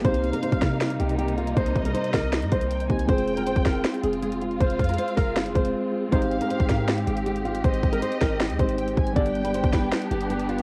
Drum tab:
HH |x-x-x-x-x-x-x---x-x-x-x-x-x-x-x-|x-x-x-x-x-x-o---x-x-x-x-x-x-x-x-|x-x-x-x-x-x-x---x-x-x-x-x-x-x-x-|x-x-xxxxx-x-o---x-x-x-x---------|
SD |------------o---o---------------|------------o---o---------------|------------o---o---------------|----------------o---------------|
BD |o---------o-o-------------------|o---o-------o-------o-------o---|o---------o-o-------------------|o---o-------o-------o-----------|

HH |x-x-x-x-x-x-x---x-x-x-x-x-x-x-x-|x-x-x-x-x-x-o---x-x-x-x-x-x-x-x-|x-x-x-x-x-x-x---x-x-x-x-x-x-x-x-|
SD |------------o---o---------------|------------o---o---------------|------------o---o---------------|
BD |o---------o-o-------------------|o---o-------o-------o-------o---|o---------o-o-------------------|